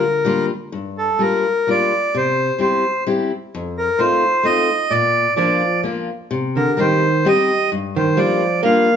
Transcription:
0.00 0.47 D3 medium
0.00 0.46 A#4 medium
0.25 0.50 G3 medium
0.25 0.50 A#3 medium
0.25 0.50 D4 medium
0.25 0.51 F4 medium
0.72 1.08 G2 medium
0.98 1.22 A4 medium
1.19 1.44 G3 soft
1.19 1.45 A#3 soft
1.19 1.45 D4 soft
1.19 1.45 F4 medium
1.19 1.70 A#4 medium
1.67 1.91 G3 soft
1.67 1.92 A#3 soft
1.67 1.92 D4 soft
1.67 1.92 F4 soft
1.67 2.17 D5 medium
2.14 2.49 C3 medium
2.14 2.60 C5 medium
2.58 2.83 G3 soft
2.58 2.84 C4 soft
2.58 2.84 E4 soft
2.58 2.84 G4 medium
2.58 3.04 C5 medium
3.06 3.30 G3 medium
3.06 3.31 C4 soft
3.06 3.31 E4 soft
3.06 3.31 G4 medium
3.55 3.88 F2 medium
3.78 4.00 A#4 medium
3.99 4.22 A3 soft
3.99 4.23 C4 soft
3.99 4.23 D#4 soft
3.99 4.23 F4 medium
3.99 4.46 C5 medium
4.43 4.68 A3 soft
4.43 4.68 C4 soft
4.43 4.69 D#4 medium
4.43 4.69 F4 soft
4.43 4.93 D#5 medium
4.90 5.26 A#2 medium
4.90 5.34 D5 medium
5.36 5.61 F3 soft
5.36 5.82 F3 medium
5.36 5.61 A#3 soft
5.36 5.62 D4 soft
5.36 5.62 F4 medium
5.36 5.81 D5 medium
5.83 6.08 F3 soft
5.83 6.09 A#3 soft
5.83 6.09 D4 soft
5.83 6.09 F4 medium
6.31 6.67 C3 medium
6.56 6.78 D3 medium
6.56 6.80 A#4 medium
6.77 7.23 D#3 medium
6.77 7.02 G3 soft
6.77 7.03 C4 soft
6.77 7.03 D#4 soft
6.77 7.03 G4 medium
6.77 7.28 C5 medium
7.25 7.49 G3 soft
7.25 7.69 G3 medium
7.25 7.50 C4 soft
7.25 7.50 D#4 soft
7.25 7.50 G4 medium
7.25 7.70 D#5 medium
7.72 8.07 G2 medium
7.96 8.17 D#3 medium
7.96 8.20 C5 medium
8.17 8.60 F3 medium
8.17 8.41 G3 medium
8.17 8.42 A#3 medium
8.17 8.42 D4 soft
8.17 8.42 F4 medium
8.17 8.61 D5 medium
8.63 8.87 G3 medium
8.63 8.96 A#3 medium
8.63 8.88 A#3 medium
8.63 8.88 D4 soft
8.63 8.88 F4 medium
8.63 8.96 F5 medium

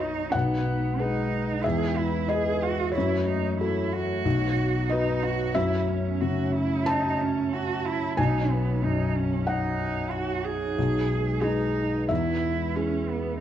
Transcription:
0.00 0.30 B1 soft
0.00 0.34 F#2 soft
0.00 0.31 F#3 medium
0.00 1.65 D#4 medium
0.00 0.35 D#4 medium
0.00 0.35 B4 medium
0.00 0.30 C#5 medium
0.00 0.36 C#5 medium
0.00 0.30 D#5 medium
0.32 1.61 B1 soft
0.32 1.02 B3 medium
0.32 1.59 F#5 medium
0.37 2.96 G#3 medium
0.37 2.96 B4 medium
0.99 1.65 D#4 soft
0.99 1.60 G#4 soft
0.99 1.60 B4 soft
1.64 2.92 E2 soft
1.64 4.25 E3 medium
1.64 1.99 G#4 medium
1.64 2.25 E5 medium
1.97 2.30 E4 medium
2.28 2.64 G#4 medium
2.28 2.92 G#4 soft
2.28 2.90 D#5 medium
2.33 2.92 B4 soft
2.63 2.94 F#4 medium
2.92 4.24 A3 medium
2.92 3.27 E4 medium
2.92 4.52 C#5 medium
2.92 8.17 C#5 medium
2.98 4.22 F#2 medium
3.27 3.59 D#4 soft
3.60 3.94 E4 soft
3.60 4.21 F#4 soft
3.60 4.21 A4 soft
3.93 4.92 F#4 medium
4.24 5.51 B1 medium
4.24 5.54 B3 medium
4.24 5.55 D#4 medium
4.89 5.25 D#4 medium
4.89 5.52 F#4 soft
4.89 5.52 B4 soft
4.89 5.51 D#5 medium
5.23 5.56 F#4 medium
5.55 8.13 F#2 medium
5.55 8.19 A3 medium
5.55 8.19 C#4 medium
5.55 5.89 E4 medium
5.55 6.83 E5 medium
5.88 6.22 C#4 soft
6.21 8.18 C#3 soft
6.21 6.54 F#4 medium
6.55 6.91 E4 medium
6.86 7.23 D#4 medium
6.86 8.13 A5 medium
7.21 7.55 C#4 medium
7.53 7.87 F#4 medium
7.86 8.18 E4 medium
8.17 10.73 B1 medium
8.17 10.78 F#3 medium
8.17 12.10 D#4 medium
8.17 8.52 D#4 medium
8.17 10.73 C#5 medium
8.17 9.43 G#5 medium
8.50 8.85 B3 soft
8.82 10.77 F#2 soft
8.82 9.18 D#4 soft
9.16 9.49 C#4 medium
9.47 10.13 D#4 medium
9.47 10.08 F#5 medium
10.11 10.46 F#4 medium
10.45 11.44 G#4 medium
10.78 12.06 B1 medium
10.78 13.40 G#3 medium
10.78 13.40 B4 soft
11.41 12.10 D#4 medium
11.41 12.06 D#4 soft
11.41 12.05 G#4 medium
12.09 13.37 E2 soft
12.09 13.40 E3 medium
12.09 12.77 E4 medium
12.09 13.37 E5 medium
12.76 13.10 C#4 medium
12.76 13.37 E4 soft
12.76 13.38 G#4 soft
13.08 13.39 B3 soft

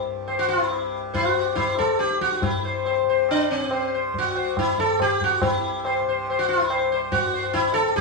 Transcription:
0.00 1.75 C2 soft
0.00 2.43 G2 medium
0.00 0.56 C3 medium
0.28 0.48 C5 soft
0.28 tabla na medium
0.39 0.48 F#4 medium
0.48 0.99 E4 medium
0.48 tabla na medium
0.56 1.15 C3 medium
0.71 tabla na medium
1.14 3.03 C3 medium
1.14 1.55 F#4 medium
1.14 1.34 C5 soft
1.14 tabla tin medium
1.14 tabla ge medium
1.55 1.78 E4 medium
1.55 1.76 C5 soft
1.55 tabla na medium
1.55 tabla ge medium
1.75 4.22 C2 medium
1.75 1.99 A4 medium
1.79 tabla ge soft
1.99 2.21 G4 medium
1.99 tabla te medium
2.11 tabla te medium
2.21 2.42 F#4 medium
2.21 tabla ke medium
2.32 tabla te medium
2.42 4.81 G2 medium
2.42 3.03 E4 medium
2.42 tabla na loud
2.42 tabla ge medium
2.65 2.85 C5 soft
2.86 3.06 C5 soft
2.86 tabla na medium
3.03 3.62 C3 medium
3.09 3.29 C5 soft
3.29 3.50 D4 medium
3.29 tabla na medium
3.51 3.90 C4 medium
3.62 5.41 C3 medium
3.71 3.92 C5 soft
3.71 tabla na medium
3.94 4.14 C5 soft
4.14 tabla tin medium
4.14 tabla ge medium
4.18 6.60 C2 medium
4.18 4.58 F#4 medium
4.35 4.56 C5 soft
4.35 tabla na medium
4.57 4.79 E4 medium
4.57 tabla na medium
4.57 tabla ge medium
4.78 7.20 G2 medium
4.78 5.01 A4 medium
4.78 tabla ge medium
5.00 5.23 G4 medium
5.00 tabla na medium
5.00 tabla ge medium
5.21 5.42 F#4 medium
5.21 tabla ge medium
5.41 6.01 C3 medium
5.41 6.03 E4 medium
5.41 tabla na loud
5.41 tabla ge medium
5.85 6.06 C5 soft
5.85 tabla na medium
6.01 7.81 C3 medium
6.09 6.28 C5 soft
6.27 6.49 C5 soft
6.27 tabla na medium
6.39 6.48 F#4 medium
6.49 6.98 E4 medium
6.61 8.01 C2 medium
6.70 6.90 C5 soft
6.70 tabla na medium
6.92 7.12 C5 soft
7.12 7.53 F#4 medium
7.12 tabla tin medium
7.12 tabla ge medium
7.20 8.01 G2 medium
7.34 7.54 C5 soft
7.53 7.73 E4 medium
7.53 tabla na medium
7.53 tabla ge medium
7.74 7.96 A4 medium
7.74 tabla te medium
7.81 8.01 C3 medium
7.96 8.01 G4 medium
7.96 tabla na medium
7.96 tabla ge medium

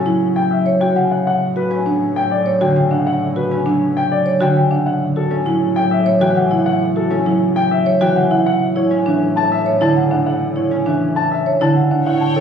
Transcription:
0.00 1.10 A2 medium
0.00 0.95 C#3 medium
0.00 1.28 C#4 medium
0.06 1.85 F#3 medium
0.06 0.26 E4 medium
0.36 0.56 G5 medium
0.51 0.71 E5 medium
0.66 0.86 C#5 medium
0.81 1.01 F#4 medium
0.81 1.00 G5 medium
0.96 1.28 C#3 medium
0.96 1.15 F#5 medium
1.11 1.25 F#5 medium
1.26 4.70 A2 medium
1.26 1.46 F#5 medium
1.56 1.76 F#4 medium
1.56 1.76 B4 medium
1.70 3.50 C#4 medium
1.86 3.65 F#3 medium
1.86 2.06 D4 medium
2.16 2.36 G5 medium
2.31 2.51 D5 medium
2.46 2.65 C#5 medium
2.61 4.40 D3 medium
2.61 2.81 F#4 medium
2.61 2.81 G5 medium
2.76 4.55 C#3 medium
2.76 2.96 G5 medium
2.91 3.11 D4 medium
2.91 3.05 F#5 medium
3.07 3.26 F#5 medium
3.36 3.56 F#4 medium
3.36 3.56 B4 medium
3.51 5.29 C#4 medium
3.66 4.89 F#3 medium
3.66 3.86 D4 medium
3.97 4.16 G5 medium
4.12 4.31 D5 medium
4.26 4.45 C#5 medium
4.41 4.89 D3 medium
4.41 4.60 F#4 medium
4.41 4.61 G5 medium
4.56 4.88 C#3 medium
4.56 4.76 G5 medium
4.71 4.91 D4 medium
4.71 4.85 F#5 medium
4.86 8.30 A2 medium
4.86 5.06 F#5 medium
5.16 5.36 F#4 medium
5.16 5.36 A4 medium
5.31 7.09 C#4 medium
5.46 7.25 F#3 medium
5.46 5.66 E4 medium
5.76 5.96 G5 medium
5.91 6.11 E5 medium
6.06 6.26 C#5 medium
6.21 8.00 E3 medium
6.21 6.41 F#4 medium
6.21 6.40 G5 medium
6.36 8.15 C#3 medium
6.36 6.56 F#5 medium
6.51 6.71 E4 medium
6.51 6.64 F#5 medium
6.66 6.86 F#5 medium
6.96 7.16 F#4 medium
6.96 7.16 A4 medium
7.10 8.89 C#4 medium
7.26 11.16 F#3 medium
7.26 7.46 E4 medium
7.56 7.76 G5 medium
7.71 7.91 E5 medium
7.86 8.06 C#5 medium
8.01 8.48 E3 medium
8.01 8.21 F#4 medium
8.01 8.21 G5 medium
8.16 8.48 C#3 medium
8.16 8.36 F#5 medium
8.31 8.51 E4 medium
8.31 8.45 F#5 medium
8.46 11.90 A2 medium
8.46 8.66 F#5 medium
8.76 8.96 E4 medium
8.76 8.96 C#5 medium
8.91 10.70 C#4 medium
9.06 10.85 E3 medium
9.06 9.26 D4 medium
9.36 9.56 A5 medium
9.52 9.71 E5 medium
9.66 9.86 C#5 medium
9.81 11.60 D3 medium
9.81 10.01 E4 medium
9.81 10.01 A5 medium
9.96 11.75 C#3 medium
9.96 10.15 F#5 medium
10.11 10.31 D4 medium
10.11 10.25 F#5 medium
10.26 10.46 F#5 medium
10.56 10.76 E4 medium
10.56 10.76 C#5 medium
10.71 12.40 C#4 medium
10.86 12.08 E3 medium
10.86 11.06 D4 medium
11.16 11.36 A5 medium
11.31 11.51 E5 medium
11.46 11.66 C#5 medium
11.61 12.08 D3 medium
11.61 11.81 E4 medium
11.61 11.81 A5 medium
11.76 12.08 C#3 medium
11.76 11.96 F#5 medium
11.91 12.11 D4 medium
11.91 12.05 F#5 medium
12.06 12.40 A2 medium
12.06 12.26 E4 medium
12.06 12.40 C#5 medium
12.06 12.26 F#5 medium
12.06 12.40 G5 medium
12.21 12.40 A5 medium
12.36 12.40 A4 medium
12.36 12.40 C#5 medium

